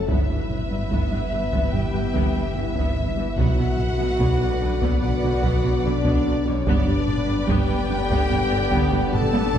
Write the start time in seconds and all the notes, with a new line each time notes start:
Already playing: F#1
0.08 G1 G2 E3 G3 B3 E4 B4 E5, taiko
0.29 G2 G3 E4
0.50 G2, taiko low-mid
0.70 G2 G3 B3
0.91 G1 G2 E3 B3, taiko
1.11 G2 G3
1.31 G1 G2 E3 G3
1.52 G2 E3 B3, taiko
1.72 G1 G2 G3 G4 G5, taiko low-mid
1.93 G2 E3 G3
2.14 G1 G2 E3 B3, taiko
2.35 G2 G3 E4
2.54 G1 G2 E3 E4 E5
2.74 G2 E3 B3, taiko
2.95 G1 G2 G3
3.16 G2 E3 G3 B3
3.36 B1 B2 D3 F#3 B3 D4 F#4 B4 F#5, taiko
3.56 B2 F#3 B4
3.78 B2, taiko low-mid
3.98 B2 F#3 B3 F#4
4.19 B1 B2 B3 D5, taiko
4.40 B2 F#3 D4
4.60 B1 B2 D3 D4
4.81 B2 B3, taiko
5.02 B1 B2 F#3 D4 F#4 F#5, taiko low-mid
5.22 B2 D3 D4
5.43 B1 B2 B3, taiko
5.63 B2 F#3 B4
5.84 B1 B2 D3 D4 B4 D5
6.04 B2 B3, taiko
6.25 B1 B2 F#3 D4
6.46 B2 D3 B3 C#4 F#4 C#5
6.66 G1 G2 D3 G3 B3 D4 B4 D5, taiko
6.87 G2 G3 G4
7.07 G2, taiko low-mid
7.27 G2 G3 D4
7.48 G1 G2 G3 B3 G4 G5, taiko
7.69 G2 G3 B3
7.90 G1 G2 D3 B3
8.10 G2 G3 B3, taiko
8.30 G1 G2 G3 B3, taiko low-mid
8.51 G2 D3 B3
8.71 G1 G2 G3 B3, taiko
8.92 G2 G3 G4
9.12 G1 G2 D3 G4 A4 A5, taiko low-mid
9.33 G2 G3 B3, taiko high
9.53 G1 G2 G3 B3, taiko low-mid